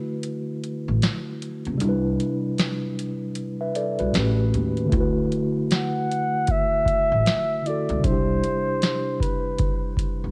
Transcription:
Already playing: tine electric piano D3 A3 E4 F#4 B4
0.23 closed hi-hat
0.64 closed hi-hat
0.88 upright bass A1
1.02 snare, closed hi-hat
1.42 closed hi-hat
1.65 upright bass C#2, closed hi-hat
1.74 tine electric piano C3 G3
1.80 upright bass C2, tine electric piano D4, closed hi-hat
1.85 tine electric piano E4 B4
2.20 closed hi-hat
2.58 snare, closed hi-hat
2.99 closed hi-hat
3.35 closed hi-hat
3.61 tine electric piano B4 E5
3.75 tine electric piano A4 D5, closed hi-hat
3.99 upright bass C2, tine electric piano F#4 B4, closed hi-hat
4.12 upright bass A1, tine electric piano A2 A3 C#4, snare, closed hi-hat
4.17 tine electric piano G4 B4
4.54 upright bass D#2, closed hi-hat
4.77 closed hi-hat
4.85 tine electric piano D3 A3
4.92 upright bass D2, tine electric piano E4, kick, closed hi-hat
4.97 tine electric piano F#4 B4
5.32 closed hi-hat
5.71 flugelhorn F#5, snare, closed hi-hat
6.11 closed hi-hat
6.47 flugelhorn E5, kick, closed hi-hat
6.86 kick, closed hi-hat
7.12 upright bass A1
7.26 snare, closed hi-hat
7.62 tine electric piano D3 A3 E4, closed hi-hat
7.67 tine electric piano F#4 A4, flugelhorn D5
7.89 upright bass C#2, closed hi-hat
7.98 tine electric piano C3 G3
8.04 upright bass C2, tine electric piano D4, flugelhorn C5, kick, closed hi-hat
8.08 tine electric piano E4 G4
8.44 closed hi-hat
8.82 snare, closed hi-hat
9.20 flugelhorn B4, kick, closed hi-hat
9.59 kick, closed hi-hat
9.97 kick, closed hi-hat
10.24 upright bass C2

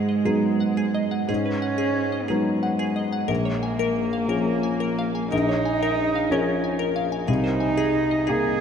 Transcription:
Already playing: felt piano G#2, cello G#3
0.09 synth pluck D#5
0.25 felt piano F#3 B3 D#4, synth pluck G#4
0.60 synth pluck F#5
0.77 synth pluck G#4
0.95 synth pluck D#5
1.11 synth pluck F#5
1.28 felt piano G#2, cello C#4, synth pluck G#4
1.46 synth pluck B4
1.62 synth pluck F#5
1.78 synth pluck G#4
2.12 synth pluck D#5
2.28 felt piano F#3 B3 D#4, cello G#3, synth pluck G#4
2.63 synth pluck F#5
2.79 synth pluck G#4
2.96 synth pluck D#5
3.13 synth pluck F#5
3.28 felt piano A#1, cello A#3, synth pluck A#4
3.45 synth pluck C#5
3.63 synth pluck G#5
3.79 synth pluck A#4
4.13 synth pluck F5
4.28 felt piano F3 C#4 G#4, synth pluck A#4
4.63 synth pluck G#5
4.80 synth pluck A#4
4.99 synth pluck F5
5.15 synth pluck G#5
5.32 felt piano A#1, cello D#4, synth pluck A#4
5.49 synth pluck C#5
5.65 synth pluck G#5
5.83 synth pluck A#4
6.15 synth pluck F5
6.30 felt piano F3 C#4 G#4, cello C#4, synth pluck A#4
6.64 synth pluck G#5
6.79 synth pluck A#4
6.96 synth pluck F5
7.12 synth pluck G#5
7.28 felt piano C2, cello D#4, synth pluck G#4
7.44 synth pluck C5
7.60 synth pluck G#5
7.78 synth pluck G#4
8.11 synth pluck D#5
8.27 felt piano A#3 D#4 G#4, synth pluck G#4, cello G#4

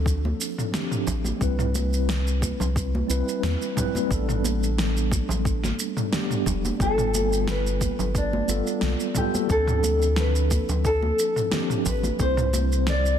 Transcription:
Already playing: analog synth bass D2, tine electric piano F3 C4 D4 A4
0.06 kick, shaker
0.25 high conga
0.41 shaker
0.58 mid tom, shaker
0.71 tine electric piano F3 C4 D4 G4, snare, high conga, shaker
0.91 mid tom, shaker
1.07 analog synth bass A1, kick, low conga, shaker
1.25 high conga, shaker
1.37 tine electric piano G3 C4
1.41 analog synth bass C2, tine electric piano E4 B4, kick, shaker
1.59 mid tom, shaker
1.75 high conga, shaker
1.94 shaker
2.09 snare, shaker
2.27 shaker
2.42 kick, high conga, shaker
2.60 analog synth bass C2, low conga, shaker
2.76 kick, shaker
2.95 high conga
3.07 analog synth bass C2, tine electric piano G3 C4 E4 B4, shaker
3.29 shaker
3.43 analog synth bass E2, snare, high conga, shaker
3.62 shaker
3.75 tine electric piano G3 C4 E4 B4, kick, mid tom, low conga, shaker
3.95 high conga, shaker
4.07 analog synth bass A1, tine electric piano G3 B3, kick
4.12 tine electric piano D4 A4, shaker
4.29 mid tom, shaker
4.44 high conga, shaker
4.63 shaker
4.78 snare, shaker
4.97 shaker
5.12 kick, high conga, shaker
5.29 analog synth bass A1, low conga, shaker
5.45 kick, shaker
5.64 snare, high conga, shaker
5.79 shaker
5.97 mid tom, shaker
6.11 tine electric piano G3 B3 D4 G4, snare, high conga, shaker
6.31 mid tom, shaker
6.46 analog synth bass E1, kick, low conga, shaker
6.65 high conga, shaker
6.77 analog synth bass G1, tine electric piano G3 B3, kick
6.81 tine electric piano F4 A4, nylon-string guitar A4, shaker
6.98 mid tom, shaker
7.14 high conga, shaker
7.33 nylon-string guitar G4, shaker
7.48 nylon-string guitar B4, snare, shaker
7.67 shaker
7.81 kick, high conga, shaker
7.99 analog synth bass G1, low conga, shaker
8.15 nylon-string guitar D4, kick, shaker
8.33 high conga
8.47 analog synth bass G1, tine electric piano G3 B3 F4 A4, shaker
8.67 shaker
8.81 analog synth bass B1, snare, high conga, shaker
9.00 shaker
9.14 tine electric piano G3 B3 F4 A4, nylon-string guitar G4, kick, mid tom, low conga, shaker
9.35 high conga, shaker
9.47 analog synth bass D2, tine electric piano F3 C4, kick, shaker
9.51 tine electric piano D4 A4, nylon-string guitar A4
9.67 mid tom, shaker
9.83 high conga, shaker
10.02 shaker
10.16 nylon-string guitar B4, snare, shaker
10.36 shaker
10.51 kick, high conga, shaker
10.69 analog synth bass D2, low conga, shaker
10.85 nylon-string guitar A4, kick, shaker
11.03 high conga
11.19 shaker
11.36 mid tom, shaker
11.50 tine electric piano F3 C4 D4 G4, snare, high conga, shaker
11.70 mid tom, shaker
11.86 analog synth bass A1, nylon-string guitar B4, kick, low conga, shaker
12.03 high conga, shaker
12.16 analog synth bass C2, tine electric piano G3 C4, kick, shaker
12.21 tine electric piano E4 C5, nylon-string guitar C5
12.37 mid tom, shaker
12.53 high conga, shaker
12.72 shaker
12.87 nylon-string guitar D5, snare, shaker
13.06 shaker

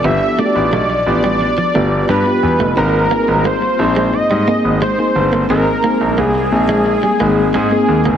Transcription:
0.04 grand piano G1, ambient pad G3 F4 B4, fm electric piano B3 D4 F4 G4, clean electric guitar B3, analog synth lead E5
0.38 clean electric guitar A3, fm electric piano B3 D4 F4 F#4, analog synth lead D5
0.46 fm electric piano G4
0.55 grand piano A1, muted clean electric guitar stroke
0.73 grand piano B1, clean electric guitar A3
0.90 muted clean electric guitar stroke
1.06 grand piano A1, fm electric piano B3 D4 F4 G4
1.24 clean electric guitar G3
1.41 muted clean electric guitar stroke
1.58 clean electric guitar F3
1.74 grand piano G1, clean electric guitar A3, fm electric piano B3 D4 F4 G4
2.09 grand piano G2, clean electric guitar G3, analog synth lead B4
2.25 fm electric piano B3 D4 F4 G4, muted clean electric guitar stroke
2.43 grand piano E2
2.60 grand piano F1, clean electric guitar A3
2.76 grand piano G#1, ambient pad G#3 A#3 C4, fm electric piano A#3 C4 D#4 G#4, clean electric guitar C4, analog synth lead A#4
3.11 fm electric piano A#3 C4 D#4 G#4, clean electric guitar A#3
3.28 grand piano G#1, muted clean electric guitar stroke
3.45 clean electric guitar A#3, analog synth lead C5
3.62 muted clean electric guitar stroke
3.79 grand piano A#1, fm electric piano A#3 C4 D#4 G#4
3.96 clean electric guitar G#3
4.13 grand piano G#2, analog synth lead D#5, muted clean electric guitar stroke
4.30 grand piano G#2, clean electric guitar G3
4.47 fm electric piano A#3 C4 D#4 G#4, clean electric guitar A#3
4.64 grand piano G#1
4.82 clean electric guitar G#3, analog synth lead C5
4.98 fm electric piano A#3 C4 D#4 G#4, muted clean electric guitar stroke
5.15 grand piano G1
5.33 clean electric guitar A#3
5.49 grand piano G#1, fm electric piano A#3 C4 D#4 G#4, clean electric guitar C4, analog synth lead A#4
5.83 fm electric piano A#3 C4 D#4 G#4, clean electric guitar A#3
6.01 grand piano A#1, muted clean electric guitar stroke
6.18 grand piano C2, clean electric guitar A#3, analog synth lead G#4
6.35 muted clean electric guitar stroke
6.52 grand piano A#1, fm electric piano A#3 C4 D#4 G#4
6.69 clean electric guitar G#3
6.86 muted clean electric guitar stroke
7.03 clean electric guitar G3
7.20 grand piano G#1, fm electric piano A#3 C4 D#4 G#4, clean electric guitar A#3
7.54 grand piano G#2, clean electric guitar G#3, analog synth lead G#4
7.71 fm electric piano A#3 C4 D#4 G#4, muted clean electric guitar stroke
7.88 grand piano D#2
8.05 grand piano G1, clean electric guitar A#3

